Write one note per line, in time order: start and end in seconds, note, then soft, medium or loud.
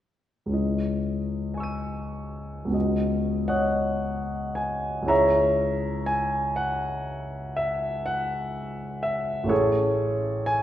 0.46 2.63 C#2 soft
0.46 2.67 G#3 soft
0.46 2.68 C#4 soft
0.51 2.69 E4 soft
0.51 2.70 D#5 soft
1.54 2.71 G#5 soft
1.54 2.73 C#6 soft
1.60 2.74 E6 soft
1.60 2.76 D#7 soft
2.65 5.01 C#2 soft
2.65 5.02 B3 soft
2.69 5.03 C#4 soft
2.69 5.04 F#4 soft
2.74 3.48 D#5 soft
3.48 4.53 C#5 soft
3.48 4.53 D#5 soft
3.48 4.56 F#5 medium
4.55 5.09 G#5 medium
5.02 9.43 C#2 soft
5.02 9.44 G#3 soft
5.02 9.44 C#4 soft
5.07 9.45 E4 soft
5.07 9.46 G#4 soft
5.07 6.05 C#5 soft
5.07 6.04 E5 soft
5.07 6.08 A#5 medium
6.06 6.58 G#5 medium
6.56 7.57 F#5 medium
7.56 8.07 E5 medium
8.06 9.02 F#5 medium
9.03 9.50 E5 medium
9.44 10.63 A1 soft
9.44 10.63 A3 soft
9.44 10.63 C#4 soft
9.48 10.63 E4 soft
9.48 10.44 G#4 soft
9.48 10.44 A4 soft
9.48 10.47 C#5 medium
10.46 10.63 G#5 medium